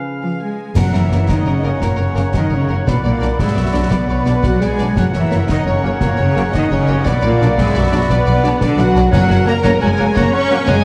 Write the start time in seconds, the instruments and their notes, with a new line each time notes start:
Already playing: trombone section C#3, trumpet section B4, clarinet B4, oboe F5, flute section G#5
0.21 cello section F3, french horn section F4, violin section F5, trumpet section F5
0.40 cello section G#3, french horn section G#4, trumpet section G#5, violin section G#5
0.75 double bass section F#1, timpani F#2, cello section F#3, viola section A#4, violin section A#4 F#5, clarinet C#5, oboe F#5, trumpet section F#5, flute section A#5, concert bass drum, snare, crash
0.79 french horn section F#4
0.93 double bass section F#1, cello section E3, french horn section E4, violin section A#4 E5, trumpet section E5, snare
1.10 double bass section F#1, trombone section C#3 A#3, violin section A#4, snare
1.28 double bass section F#1, cello section D#3, french horn section D#4, violin section A#4 D#5, viola section D#5, trumpet section D#5, concert bass drum, snare
1.45 double bass section F#1, cello section C#3, french horn section C#4, violin section A#4 C#5, trumpet section C#5
1.63 double bass section F#1, trombone section C#3 A#3, violin section A#4
1.80 double bass section F#1, cello section A#2, french horn section A#3, trumpet section A#4, violin section A#4, viola section C#5, concert bass drum, snare
1.96 double bass section F#1, cello section C#3, violin section A#4, trumpet section C#5
2.00 french horn section C#4, violin section C#5
2.15 double bass section F#1, trombone section C#3 A#3, violin section A#4, snare
2.33 double bass section F#1, cello section D#3, french horn section D#4, viola section A#4, violin section A#4 D#5, trumpet section D#5, concert bass drum, snare
2.50 double bass section F#1, cello section C#3, french horn section C#4, violin section A#4 C#5, trumpet section C#5
2.68 double bass section F#1, trombone section C#3 A#3, violin section A#4
2.84 double bass section B1, cello section B2, trumpet section B4, violin section B4 D5, viola section D5, clarinet D5, flute section B5, concert bass drum, snare
2.88 french horn section B3
3.03 double bass section B1, cello section A#2, french horn section A#3, trumpet section A#3, violin section A#4 D5
3.20 double bass section B1, trombone section F#3 D4, violin section D5, snare
3.39 double bass section B1, cello section G#2, french horn section G#3, violin section G#4 D5, trumpet section G#4, viola section E5, concert bass drum, snare
3.55 double bass section B1, cello section F#2, french horn section F#3, violin section F#4 D5, trumpet section F#4
3.72 double bass section B1, trombone section F#3 D4, violin section D5
3.89 double bass section B1, cello section B2, french horn section B3, violin section B4 D5, trumpet section B4, viola section D5, concert bass drum, snare
4.09 double bass section B1, viola section C#5, violin section D5
4.25 double bass section B1, trombone section F#3 D4, viola section B4, violin section D5, snare
4.42 double bass section B1, cello section F#3, french horn section F#4, violin section D5 F#5, trumpet section F#5, concert bass drum, snare
4.60 double bass section B1, cello section G#3, french horn section G#4, violin section D5 G#5, trumpet section G#5, snare
4.79 double bass section B1, trombone section F#3 D4, violin section D5, snare
4.95 double bass section F#1, cello section F#3, french horn section F#4, viola section A#4, clarinet C#5, violin section C#5 F#5, oboe F#5, trumpet section F#5, flute section A#5, concert bass drum, snare
5.13 double bass section F#1, cello section E3, french horn section E4, violin section C#5 E5, trumpet section E5, snare
5.30 double bass section F#1, trombone section F#3 A#3, violin section C#5, snare
5.47 double bass section F#1, cello section D#3, french horn section D#4, violin section C#5 D#5, trumpet section D#5, concert bass drum, snare
5.65 double bass section F#1, cello section C#3, french horn section C#4, violin section C#5, trumpet section C#5
5.83 double bass section F#1, trombone section F#3 A#3, violin section C#5
5.99 double bass section F#1, cello section A#2, french horn section A#3, violin section A#4 C#5, trumpet section A#4, viola section C#5, concert bass drum, snare
6.16 double bass section F#1, cello section C#3, french horn section C#4, violin section C#5
6.20 trumpet section C#5
6.35 double bass section F#1, trombone section F#3 A#3, violin section C#5, snare
6.52 double bass section F#1, cello section D#3, french horn section D#4, violin section C#5 D#5, viola section D#5, trumpet section D#5, concert bass drum, snare
6.69 double bass section F#1, cello section C#3, french horn section C#4, violin section C#5, trumpet section C#5
6.87 double bass section F#1, trombone section F#3 A#3, violin section C#5
7.04 double bass section B1, cello section B2, french horn section B3, violin section B4 D5, trumpet section B4, clarinet D5, viola section D5, flute section B5, concert bass drum, snare
7.22 double bass section B1, cello section A#2, trumpet section A#3, violin section A#4 D5
7.26 french horn section A#3
7.41 double bass section B1, trombone section F#3 D4, violin section D5, snare
7.56 double bass section B1, cello section G#2, french horn section G#3, violin section G#4 D5, trumpet section G#4, viola section E5, concert bass drum, snare
7.74 double bass section B1, cello section F#2, french horn section F#3, violin section F#4 D5, trumpet section F#4
7.92 double bass section B1, trombone section F#3 D4, violin section D5
8.08 double bass section B1, cello section B2, violin section B4 D5, trumpet section B4, viola section D5, concert bass drum, snare
8.12 french horn section B3
8.26 double bass section B1, violin section D5
8.42 double bass section B1, trombone section F#3 D4, violin section D5, snare
8.59 double bass section B1, cello section D3, french horn section D4, viola section B4, violin section D5, trumpet section D5, concert bass drum, snare
8.76 double bass section B1, cello section F#3, french horn section F#4, violin section D5 F#5, trumpet section F#5, snare
8.94 double bass section B1, trombone section F#3 D4, violin section D5, snare
9.09 timpani F#2, cello section F#3, violin section C#4 F#5, french horn section F#4, viola section A#4, clarinet C#5, oboe F#5, trumpet section F#5, flute section A#5
9.13 double bass section F#1, concert bass drum, snare, crash
9.28 double bass section F#1, violin section F#4, clarinet C#5, oboe F#5, flute section A#5, snare
9.46 trombone section F#3 A#3, cello section A#3, french horn section A#4, clarinet C#5, oboe F#5, flute section A#5, violin section A#5, trumpet section A#5, snare
9.63 double bass section F#1, cello section A#3, violin section C#4 A#5, french horn section A#4, clarinet C#5, oboe F#5, trumpet section A#5, concert bass drum, snare
9.80 double bass section F#1, cello section G#3, violin section F#4 G#5, french horn section G#4, clarinet C#5, oboe F#5, trumpet section G#5, flute section A#5
9.97 double bass section F#1, trombone section F#3 A#3, violin section A#4, clarinet C#5, oboe F#5, flute section A#5
10.14 double bass section F#1, cello section A#3, violin section C#4 A#5, french horn section A#4, viola section C#5, clarinet C#5, oboe F#5, flute section A#5, trumpet section A#5, concert bass drum, snare
10.31 cello section C#4, clarinet C#5, french horn section C#5, oboe F#5, flute section A#5, trumpet section C#6, violin section C#6
10.49 trombone section F#3 A#3, clarinet C#5, oboe F#5, flute section A#5, snare
10.67 double bass section F#1, cello section G#3, violin section C#4 G#5, french horn section G#4, clarinet C#5, viola section D#5, oboe F#5, trumpet section G#5, flute section A#5, concert bass drum, snare